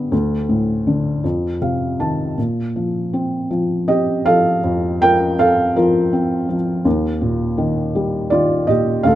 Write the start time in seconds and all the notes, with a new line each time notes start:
Already playing: D3 G3 B3 B4 D5
0.12 D2
0.49 A2
0.87 D3
1.24 F2
1.62 C3 F5
2.00 D#3 A5
2.38 A#2
2.76 F3
3.13 C4
3.51 F3
3.88 C4 G4 D#5
4.26 F3 A4 F5
4.64 F2
5.01 F3 A#4 G5
5.39 C4 A4 F5
5.76 F3 F4 A#4
6.13 C4
6.49 F3
6.85 D#2
7.21 A#2
7.58 D#3
7.95 G3
8.30 D#3 F4 D5
8.67 A#2 G4 D#5
9.03 D2 A4 F5